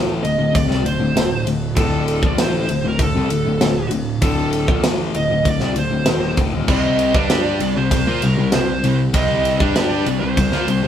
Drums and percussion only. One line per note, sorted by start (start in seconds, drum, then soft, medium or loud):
0.25 ride medium
0.55 kick medium
0.55 ride medium
0.71 snare soft
0.86 ride medium
1.17 snare loud
1.17 ride loud
1.47 ride medium
1.77 kick loud
1.77 ride loud
2.08 ride medium
2.23 kick loud
2.38 snare loud
2.38 ride loud
2.69 ride medium
2.99 kick loud
2.99 ride medium
3.30 ride medium
3.61 snare loud
3.61 ride medium
3.91 ride medium
4.22 kick loud
4.22 ride loud
4.53 ride medium
4.68 kick loud
4.84 snare loud
4.84 ride loud
5.15 ride medium
5.45 kick medium
5.45 ride medium
5.60 snare soft
5.76 ride medium
6.06 snare loud
6.06 ride medium
6.37 kick loud
6.37 ride medium
6.68 kick loud
6.68 crash medium
6.99 ride medium
7.15 kick loud
7.30 snare loud
7.30 ride loud
7.60 ride medium
7.91 kick loud
7.91 ride loud
8.22 ride medium
8.52 snare medium
8.52 ride loud
8.84 ride medium
9.14 kick loud
9.14 ride loud
9.45 ride medium
9.60 kick loud
9.76 snare loud
9.76 ride medium
10.06 ride medium
10.37 kick medium
10.37 ride loud
10.52 snare soft
10.68 ride medium